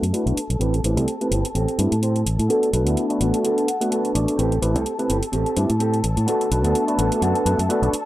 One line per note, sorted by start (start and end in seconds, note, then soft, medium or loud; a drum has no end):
0.00 0.11 F#2 medium
0.00 4.38 A4 medium
0.00 4.38 A5 medium
0.00 closed hi-hat soft
0.12 0.23 A3 medium
0.12 0.31 B3 medium
0.12 0.23 B3 medium
0.12 0.32 D4 medium
0.12 0.23 D4 medium
0.12 0.32 E4 medium
0.12 0.23 F#4 medium
0.12 0.24 B4 medium
0.12 closed hi-hat soft
0.26 0.35 B1 medium
0.26 0.37 A3 medium
0.26 0.37 B3 medium
0.26 0.37 D4 medium
0.26 0.37 F#4 medium
0.26 0.37 B4 medium
0.26 closed hi-hat soft
0.37 closed hi-hat medium
0.49 0.58 B1 medium
0.49 muted clean electric guitar stroke soft
0.49 closed hi-hat soft
0.59 0.79 A1 medium
0.59 0.73 A3 medium
0.59 0.78 C4 medium
0.59 0.73 C4 medium
0.59 0.73 E4 medium
0.59 0.79 G4 medium
0.59 0.74 G4 medium
0.59 0.79 A4 loud
0.59 0.74 B4 medium
0.59 closed hi-hat soft
0.74 closed hi-hat soft
0.84 0.97 A1 medium
0.84 1.03 A3 medium
0.84 1.03 C4 medium
0.84 1.03 E4 medium
0.84 1.03 G4 medium
0.84 1.03 B4 medium
0.84 closed hi-hat medium
0.96 1.05 C2 medium
0.96 1.14 C4 medium
0.96 1.14 G4 medium
0.96 1.15 A4 medium
0.96 closed hi-hat soft
1.08 closed hi-hat soft
1.21 1.39 A3 medium
1.21 1.39 C4 medium
1.21 1.39 E4 medium
1.21 1.39 G4 medium
1.21 1.39 B4 medium
1.21 closed hi-hat soft
1.31 1.42 G1 medium
1.31 1.44 C4 medium
1.31 1.45 G4 medium
1.31 1.45 B4 medium
1.31 closed hi-hat medium
1.45 closed hi-hat soft
1.54 1.65 A1 medium
1.54 1.78 C4 loud
1.54 1.79 G4 medium
1.54 1.79 A4 loud
1.54 closed hi-hat soft
1.68 closed hi-hat soft
1.78 1.89 G2 medium
1.78 1.91 A3 medium
1.78 1.91 C4 medium
1.78 1.91 E4 medium
1.78 1.92 G4 medium
1.78 1.92 B4 medium
1.78 closed hi-hat medium
1.92 2.22 A2 medium
1.92 closed hi-hat soft
2.01 2.20 C4 medium
2.01 2.21 G4 medium
2.01 2.21 C5 medium
2.01 closed hi-hat soft
2.16 closed hi-hat soft
2.26 2.36 A1 medium
2.26 closed hi-hat medium
2.38 2.47 A2 medium
2.38 muted clean electric guitar stroke soft
2.38 closed hi-hat soft
2.48 2.68 A3 medium
2.48 2.67 B3 medium
2.48 2.68 B3 medium
2.48 2.68 D4 medium
2.48 2.69 D4 medium
2.48 2.69 F#4 medium
2.48 2.68 A4 loud
2.48 2.69 A4 medium
2.48 closed hi-hat soft
2.63 closed hi-hat soft
2.73 2.86 B1 medium
2.73 3.07 A3 medium
2.73 3.07 B3 medium
2.73 3.07 D4 medium
2.73 3.07 F#4 medium
2.73 3.07 B4 medium
2.73 closed hi-hat medium
2.85 2.95 D2 medium
2.85 3.03 B3 medium
2.85 3.04 D4 medium
2.85 3.04 E4 medium
2.85 closed hi-hat soft
2.97 closed hi-hat soft
3.09 3.65 A3 medium
3.09 3.65 B3 medium
3.09 3.65 D4 medium
3.09 3.66 F#4 medium
3.09 3.66 B4 medium
3.09 closed hi-hat soft
3.20 3.31 A1 medium
3.20 3.33 B3 medium
3.20 3.34 D4 medium
3.20 3.34 F#4 medium
3.20 3.43 D5 soft
3.20 closed hi-hat medium
3.34 closed hi-hat soft
3.43 3.67 B3 loud
3.43 3.68 D4 medium
3.43 3.68 A4 loud
3.43 3.66 E5 medium
3.43 closed hi-hat soft
3.58 closed hi-hat soft
3.67 3.90 F#5 medium
3.67 closed hi-hat medium
3.80 4.12 A3 medium
3.80 4.12 B3 medium
3.80 4.13 D4 medium
3.80 4.13 F#4 medium
3.80 4.13 B4 medium
3.80 closed hi-hat soft
3.90 4.09 B3 medium
3.90 4.10 D4 medium
3.90 4.10 A4 medium
3.90 4.35 A5 medium
3.90 closed hi-hat soft
4.05 closed hi-hat soft
4.15 4.25 A1 medium
4.15 4.36 A3 medium
4.15 4.36 B3 medium
4.15 4.36 D4 medium
4.15 4.36 F#4 medium
4.15 4.37 D5 medium
4.15 closed hi-hat medium
4.27 muted clean electric guitar stroke soft
4.27 closed hi-hat soft
4.37 4.58 A1 medium
4.37 4.51 A3 medium
4.37 4.56 C4 medium
4.37 4.51 C4 medium
4.37 4.51 E4 medium
4.37 4.57 G4 medium
4.37 4.51 G4 medium
4.37 4.57 A4 loud
4.37 8.05 A4 medium
4.37 4.51 B4 medium
4.37 8.05 A5 medium
4.37 closed hi-hat soft
4.52 closed hi-hat soft
4.62 4.75 A1 medium
4.62 4.81 A3 medium
4.62 4.81 C4 medium
4.62 4.81 E4 medium
4.62 4.81 G4 medium
4.62 4.81 B4 medium
4.62 closed hi-hat medium
4.74 4.84 C2 medium
4.74 4.92 C4 medium
4.74 4.93 G4 medium
4.74 4.93 A4 medium
4.74 closed hi-hat soft
4.86 closed hi-hat soft
4.99 5.16 A3 medium
4.99 5.17 C4 medium
4.99 5.17 E4 medium
4.99 5.17 G4 medium
4.99 5.17 B4 medium
4.99 closed hi-hat soft
5.08 5.20 G1 medium
5.08 5.22 C4 medium
5.08 5.23 G4 medium
5.08 5.23 A4 medium
5.08 closed hi-hat medium
5.23 closed hi-hat soft
5.32 5.43 A1 medium
5.32 5.56 C4 loud
5.32 5.57 G4 medium
5.32 5.57 A4 loud
5.32 closed hi-hat soft
5.46 closed hi-hat soft
5.56 5.67 G2 medium
5.56 5.69 A3 medium
5.56 5.69 C4 medium
5.56 5.69 E4 medium
5.56 5.70 G4 medium
5.56 5.70 B4 medium
5.56 closed hi-hat medium
5.70 6.00 A2 medium
5.70 closed hi-hat soft
5.79 5.98 C4 medium
5.79 5.99 G4 medium
5.79 5.99 A4 medium
5.79 closed hi-hat soft
5.94 closed hi-hat soft
6.04 6.14 A1 medium
6.04 closed hi-hat medium
6.16 6.25 A2 medium
6.16 muted clean electric guitar stroke soft
6.16 closed hi-hat soft
6.26 6.46 A3 medium
6.26 6.45 B3 loud
6.26 6.46 B3 medium
6.26 6.46 D4 medium
6.26 6.46 F#4 medium
6.26 6.46 A4 loud
6.26 6.47 A4 medium
6.26 closed hi-hat soft
6.41 closed hi-hat soft
6.51 6.64 B1 medium
6.51 6.85 A3 medium
6.51 6.85 B3 medium
6.51 6.85 D4 medium
6.51 6.85 F#4 medium
6.51 6.85 B4 medium
6.51 closed hi-hat medium
6.63 6.73 D2 medium
6.63 6.81 B3 medium
6.63 6.81 D4 medium
6.63 6.82 A4 medium
6.63 closed hi-hat soft
6.75 closed hi-hat soft
6.87 7.43 A3 medium
6.87 7.43 B3 medium
6.87 7.43 D4 medium
6.87 7.44 F#4 medium
6.87 7.44 B4 medium
6.87 closed hi-hat soft
6.97 7.09 A1 medium
6.97 7.11 B3 medium
6.97 7.11 D4 medium
6.97 7.12 A4 medium
6.97 7.20 A5 medium
6.97 closed hi-hat medium
7.12 closed hi-hat soft
7.21 7.32 F#2 medium
7.21 7.45 B3 loud
7.21 7.46 D4 medium
7.21 7.46 A4 loud
7.21 7.56 F#5 medium
7.21 closed hi-hat soft
7.35 closed hi-hat soft
7.45 7.56 F#2 medium
7.45 7.58 A3 medium
7.45 7.58 B3 medium
7.45 7.58 D4 medium
7.45 7.58 F#4 medium
7.45 7.59 B4 medium
7.45 closed hi-hat medium
7.58 7.67 F#2 medium
7.58 7.69 E5 medium
7.58 closed hi-hat soft
7.69 7.79 A3 medium
7.69 7.87 B3 medium
7.69 7.79 B3 medium
7.69 7.88 D4 medium
7.69 7.79 D4 medium
7.69 7.79 F#4 medium
7.69 7.88 A4 medium
7.69 7.80 B4 medium
7.69 8.05 D5 medium
7.69 closed hi-hat soft
7.82 7.91 B1 medium
7.82 7.92 A3 medium
7.82 7.92 B3 medium
7.82 7.93 D4 medium
7.82 7.93 F#4 medium
7.82 7.93 B4 medium
7.82 closed hi-hat soft
7.93 muted fingered electric bass stroke soft
7.93 closed hi-hat medium